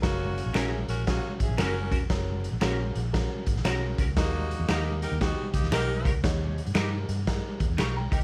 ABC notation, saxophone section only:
X:1
M:4/4
L:1/16
Q:"Swing" 1/4=116
K:F#mix
V:1 name="Saxophone section"
[A,CF]4 [CEG]2 [CFA]2 [A,CF]2 [CEG]2 [CFA]3 z | z16 | [A,DF]4 [A,D=G]2 [DGA]2 [B,DF]2 [A,DG]2 [DGA]3 z | z16 |]